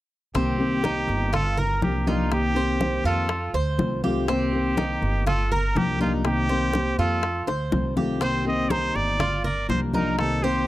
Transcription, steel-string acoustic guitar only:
0.34 0.58 C3 medium
0.34 0.58 D#3 medium
0.34 0.58 A#3 medium
0.34 0.58 C4 medium
0.34 0.57 G4 medium
0.59 0.82 D#3 medium
0.59 0.83 A#3 medium
0.59 0.83 C4 medium
0.59 0.82 G4 medium
0.83 1.32 D#3 soft
0.83 1.32 A#3 medium
0.83 1.32 C4 medium
0.83 1.32 G4 medium
1.33 muted steel-string acoustic guitar stroke medium
1.82 2.06 F3 medium
1.82 2.06 A#3 medium
1.82 2.06 D4 soft
1.82 2.05 G4 medium
2.06 2.31 F3 medium
2.06 2.30 A#3 medium
2.06 2.31 D4 medium
2.06 2.30 G4 medium
2.31 2.55 C3 medium
2.31 2.55 D#3 medium
2.31 2.55 A#3 medium
2.31 2.54 C4 medium
2.31 2.54 G4 medium
2.55 2.79 D#3 medium
2.55 2.79 A#3 medium
2.55 2.79 C4 medium
2.55 2.79 G4 medium
2.80 3.28 D#3 soft
2.80 3.29 A#3 soft
2.80 3.29 C4 medium
2.80 3.29 G4 medium
3.30 muted steel-string acoustic guitar stroke medium
3.79 4.03 D#3 soft
3.79 4.03 A3 medium
3.79 4.03 C4 medium
3.79 4.02 F4 medium
4.04 4.27 D#3 medium
4.04 4.28 A3 medium
4.04 4.27 C4 medium
4.04 4.27 F4 medium
4.29 4.52 C3 medium
4.29 4.52 D#3 medium
4.29 4.52 A#3 medium
4.29 4.52 C4 medium
4.29 4.52 G4 medium
4.53 4.76 D#3 medium
4.53 4.77 A#3 medium
4.53 4.77 C4 medium
4.53 4.76 G4 medium
4.78 5.26 D#3 medium
4.78 5.26 A#3 medium
4.78 5.26 C4 medium
4.78 5.26 G4 medium
5.27 muted steel-string acoustic guitar stroke medium
5.75 5.99 F3 medium
5.75 6.00 A#3 soft
5.75 5.99 D4 soft
5.75 5.99 G4 medium
6.00 6.24 F3 medium
6.00 6.24 A#3 medium
6.00 6.24 D4 medium
6.00 6.24 G4 medium
6.25 6.48 C3 medium
6.25 6.49 D#3 medium
6.25 6.49 A#3 medium
6.25 6.49 C4 medium
6.25 6.48 G4 medium
6.49 6.72 D#3 medium
6.49 6.73 A#3 medium
6.49 6.73 C4 medium
6.49 6.73 G4 medium
6.74 7.22 D#3 soft
6.74 7.22 A#3 medium
6.74 7.22 C4 soft
6.74 7.23 G4 medium
7.23 muted steel-string acoustic guitar stroke medium
7.72 7.96 D#3 soft
7.72 7.96 A3 soft
7.72 7.95 C4 soft
7.72 7.95 F4 soft
7.96 8.20 D#3 medium
7.96 8.21 A3 medium
7.96 8.20 C4 medium
7.96 8.20 F4 medium
8.21 8.45 C3 medium
8.21 8.45 D#3 medium
8.21 8.45 A#3 medium
8.21 8.45 C4 medium
8.21 8.44 G4 medium
8.45 8.69 D#3 medium
8.45 8.70 A#3 medium
8.45 8.70 C4 medium
8.45 8.69 G4 medium
8.70 9.19 D#3 soft
8.70 9.19 A#3 medium
8.70 9.19 C4 medium
8.70 9.19 G4 medium
9.20 muted steel-string acoustic guitar stroke medium
9.68 9.92 F3 soft
9.68 9.93 A#3 soft
9.68 9.93 D4 medium
9.68 9.92 G4 soft
9.93 10.18 F3 medium
9.93 10.18 A#3 medium
9.93 10.17 D4 medium
9.93 10.17 G4 medium
10.19 10.42 C3 medium
10.19 10.42 D#3 medium
10.19 10.43 A#3 medium
10.19 10.43 C4 medium
10.19 10.42 G4 medium
10.43 10.66 D#3 medium
10.43 10.67 A#3 medium
10.43 10.67 C4 medium
10.43 10.67 G4 medium

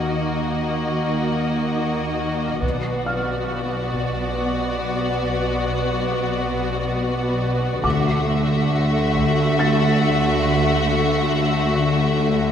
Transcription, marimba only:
0.02 0.28 D#3 soft
0.46 0.72 D#3 soft
0.89 1.15 D#3 soft
1.32 1.58 D#3 soft
1.76 2.02 D#4 soft
2.20 2.46 D#3 soft
2.63 2.89 B2 soft
3.06 3.32 B2 soft
3.50 3.76 B2 soft
3.93 4.19 B2 soft
4.37 4.63 B3 soft
4.80 5.07 B2 soft
5.23 5.50 B2 soft
5.67 5.93 B2 soft
6.10 6.36 B2 soft
6.54 6.80 B2 medium
6.97 7.24 B3 soft
7.41 7.67 B2 soft
7.85 8.11 D3 medium
8.28 8.54 D3 soft
8.72 8.98 D3 soft
9.15 9.41 D3 medium
9.58 9.84 D4 soft
10.02 10.28 D3 soft
10.45 10.71 D3 medium
10.89 11.15 D3 soft
11.32 11.59 D3 soft
11.76 12.02 D3 medium
12.20 12.46 D4 soft

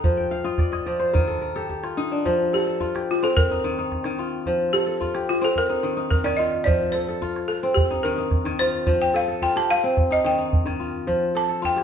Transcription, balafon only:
0.00 0.28 A4 medium
2.54 3.10 G4 medium
3.11 3.22 F4 medium
3.24 3.35 A4 medium
3.37 3.49 A#4 loud
4.73 5.29 G4 medium
5.29 5.35 F4 medium
5.45 5.50 A4 medium
5.58 5.82 A#4 loud
6.11 6.23 A#4 medium
6.24 6.38 D5 medium
6.37 6.63 D#5 medium
6.64 6.93 D5 medium
6.92 7.49 C5 medium
7.48 7.76 A4 medium
7.74 8.03 G4 medium
8.03 8.60 A#4 medium
8.59 9.01 C5 medium
9.02 9.15 G5 medium
9.16 9.43 F5 medium
9.43 9.56 G5 medium
9.57 9.70 A5 loud
9.70 10.12 F5 loud
10.12 10.25 D#5 medium
10.26 10.51 G5 medium
11.37 11.64 A5 loud
11.65 11.84 G5 medium

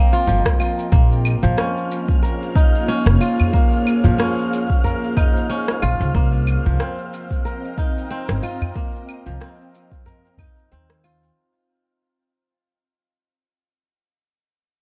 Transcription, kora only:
0.00 0.26 F3 medium
0.00 0.92 A#3 loud
0.00 0.77 C4 medium
0.00 0.90 A#4 medium
0.13 0.59 F4 medium
0.27 0.98 F3 medium
0.60 2.11 F4 medium
0.92 2.85 A#3 medium
1.43 3.77 F3 medium
1.57 2.88 C#4 medium
2.23 3.50 A#4 medium
2.55 4.18 D#4 medium
2.88 4.18 C#4 loud
3.21 4.72 F4 loud
3.53 5.46 A#3 medium
4.04 6.20 F3 medium
4.18 5.49 C#4 medium
4.84 6.12 A#4 medium
5.17 6.79 D#4 medium
5.50 6.86 C#4 loud
5.82 7.34 F4 loud
6.15 8.08 A#3 medium
6.66 9.00 F3 medium
6.80 8.10 C4 medium
7.45 8.72 A#4 medium
7.78 9.40 D#4 medium
8.11 9.40 C4 loud
8.43 9.94 F4 loud
8.76 10.69 A#3 medium
9.26 11.42 F3 medium
9.41 10.71 C4 medium
10.06 11.33 A#4 medium
10.39 12.01 D#4 medium
10.72 12.52 C4 loud
11.04 12.55 F4 loud

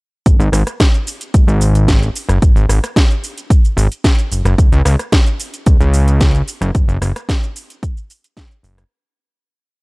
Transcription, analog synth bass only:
0.26 0.37 G#1 soft
0.39 0.49 G#1 medium
0.52 0.63 G#1 loud
1.34 1.45 G#1 soft
1.47 2.09 G#1 medium
2.29 2.39 F#1 medium
2.42 2.53 G#1 soft
2.56 2.66 G#1 loud
2.69 2.79 G#1 loud
3.77 3.87 G#1 loud
4.32 4.43 F#1 soft
4.45 4.55 F#1 medium
4.58 4.70 C#2 soft
4.72 4.82 C#2 loud
4.85 4.96 C#2 loud
5.66 5.78 C#2 soft
5.80 6.42 C#2 medium
6.61 6.71 F#1 medium
6.75 6.86 F#1 soft
6.88 6.98 F#1 medium
7.01 7.12 F#1 medium
8.63 8.84 F#1 loud

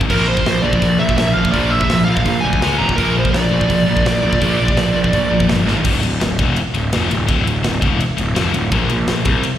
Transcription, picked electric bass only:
0.10 0.36 A#1 medium
0.46 0.59 A#1 medium
0.63 0.77 A#1 medium
0.82 0.95 A#1 medium
1.00 1.13 A#1 medium
1.18 1.31 A#1 medium
1.37 1.50 A#1 medium
1.54 1.80 A#1 medium
1.90 2.03 A#1 medium
2.08 2.21 A#1 medium
2.26 2.39 A#1 medium
2.44 2.57 D2 loud
2.61 2.75 C#2 medium
2.79 2.93 D#1 medium
2.98 3.25 A#1 medium
3.33 3.47 A#1 medium
3.51 3.65 A#1 medium
3.70 3.83 A#1 medium
3.88 4.01 A#1 medium
4.05 4.18 A#1 medium
4.24 4.37 A#1 medium
4.42 4.68 A#1 medium
4.77 4.90 A#1 medium
4.94 5.08 A#1 medium
5.14 5.27 A#1 medium
5.30 5.44 A#1 loud
5.48 5.62 G1 medium
5.66 5.80 G#1 medium
5.85 6.02 D1 loud
6.03 6.20 D1 medium
6.21 6.38 D1 medium
6.39 6.56 E1 medium
6.75 6.92 D1 medium
6.93 7.10 F1 medium
7.11 7.28 D1 medium
7.29 7.46 D1 medium
7.46 7.63 D1 medium
7.65 7.81 D1 medium
7.82 7.99 E1 loud
8.19 8.36 D1 medium
8.37 8.53 F1 medium
8.54 8.71 D1 medium
8.72 8.89 A#1 loud
8.90 9.07 A#1 medium
9.08 9.25 A#1 medium
9.26 9.43 C2 loud

